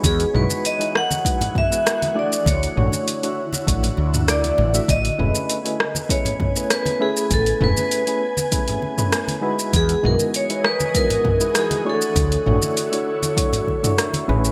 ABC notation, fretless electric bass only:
X:1
M:4/4
L:1/8
Q:1/4=99
K:A
V:1 name="Fretless electric bass" clef=bass
E,, B,,, z6 | D,, A,,, z2 A,,, D,,2 A,,, | A,,, E,,, z6 | A,,, E,,, z6 |
E,, B,,, z6 | D,, A,,, z4 z A,,, |]